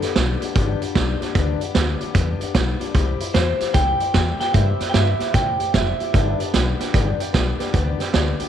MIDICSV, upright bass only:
0, 0, Header, 1, 3, 480
1, 0, Start_track
1, 0, Key_signature, 1, "major"
1, 0, Tempo, 398936
1, 1630, Time_signature, 4, 2, 24, 8
1, 10210, End_track
2, 0, Start_track
2, 0, Title_t, "Upright bass"
2, 0, Program_c, 0, 32
2, 194, Note_on_c, 0, 35, 92
2, 421, Note_off_c, 0, 35, 0
2, 670, Note_on_c, 0, 31, 89
2, 899, Note_off_c, 0, 31, 0
2, 1148, Note_on_c, 0, 35, 90
2, 1377, Note_off_c, 0, 35, 0
2, 1626, Note_on_c, 0, 38, 91
2, 1856, Note_off_c, 0, 38, 0
2, 2109, Note_on_c, 0, 38, 88
2, 2337, Note_off_c, 0, 38, 0
2, 2586, Note_on_c, 0, 40, 89
2, 2816, Note_off_c, 0, 40, 0
2, 3066, Note_on_c, 0, 35, 94
2, 3295, Note_off_c, 0, 35, 0
2, 3548, Note_on_c, 0, 36, 103
2, 3777, Note_off_c, 0, 36, 0
2, 4029, Note_on_c, 0, 40, 96
2, 4257, Note_off_c, 0, 40, 0
2, 4508, Note_on_c, 0, 36, 90
2, 4737, Note_off_c, 0, 36, 0
2, 4986, Note_on_c, 0, 40, 87
2, 5215, Note_off_c, 0, 40, 0
2, 5468, Note_on_c, 0, 43, 98
2, 5697, Note_off_c, 0, 43, 0
2, 5950, Note_on_c, 0, 43, 104
2, 6178, Note_off_c, 0, 43, 0
2, 6430, Note_on_c, 0, 45, 78
2, 6658, Note_off_c, 0, 45, 0
2, 6906, Note_on_c, 0, 29, 95
2, 7136, Note_off_c, 0, 29, 0
2, 7390, Note_on_c, 0, 31, 103
2, 7619, Note_off_c, 0, 31, 0
2, 7872, Note_on_c, 0, 35, 91
2, 8100, Note_off_c, 0, 35, 0
2, 8351, Note_on_c, 0, 31, 97
2, 8580, Note_off_c, 0, 31, 0
2, 8833, Note_on_c, 0, 35, 87
2, 9061, Note_off_c, 0, 35, 0
2, 9312, Note_on_c, 0, 38, 100
2, 9540, Note_off_c, 0, 38, 0
2, 9799, Note_on_c, 0, 38, 88
2, 10025, Note_off_c, 0, 38, 0
2, 10210, End_track
3, 0, Start_track
3, 0, Title_t, "Muted upright bass strokes"
3, 27, Note_on_c, 9, 29, 73
3, 148, Note_off_c, 9, 29, 0
3, 510, Note_on_c, 9, 29, 86
3, 630, Note_off_c, 9, 29, 0
3, 978, Note_on_c, 9, 29, 68
3, 1098, Note_off_c, 9, 29, 0
3, 1461, Note_on_c, 9, 29, 81
3, 1581, Note_off_c, 9, 29, 0
3, 1940, Note_on_c, 9, 29, 75
3, 2060, Note_off_c, 9, 29, 0
3, 2426, Note_on_c, 9, 29, 77
3, 2547, Note_off_c, 9, 29, 0
3, 2908, Note_on_c, 9, 29, 75
3, 3028, Note_off_c, 9, 29, 0
3, 3386, Note_on_c, 9, 29, 71
3, 3506, Note_off_c, 9, 29, 0
3, 3866, Note_on_c, 9, 29, 67
3, 3986, Note_off_c, 9, 29, 0
3, 4340, Note_on_c, 9, 29, 72
3, 4460, Note_off_c, 9, 29, 0
3, 4815, Note_on_c, 9, 29, 67
3, 4935, Note_off_c, 9, 29, 0
3, 5296, Note_on_c, 9, 29, 72
3, 5416, Note_off_c, 9, 29, 0
3, 5780, Note_on_c, 9, 29, 68
3, 5900, Note_off_c, 9, 29, 0
3, 6265, Note_on_c, 9, 29, 77
3, 6385, Note_off_c, 9, 29, 0
3, 6749, Note_on_c, 9, 29, 64
3, 6869, Note_off_c, 9, 29, 0
3, 7226, Note_on_c, 9, 29, 73
3, 7346, Note_off_c, 9, 29, 0
3, 7706, Note_on_c, 9, 29, 73
3, 7826, Note_off_c, 9, 29, 0
3, 8181, Note_on_c, 9, 29, 81
3, 8302, Note_off_c, 9, 29, 0
3, 8662, Note_on_c, 9, 29, 72
3, 8783, Note_off_c, 9, 29, 0
3, 9635, Note_on_c, 9, 29, 68
3, 9755, Note_off_c, 9, 29, 0
3, 10111, Note_on_c, 9, 29, 85
3, 10210, Note_off_c, 9, 29, 0
3, 10210, End_track
0, 0, End_of_file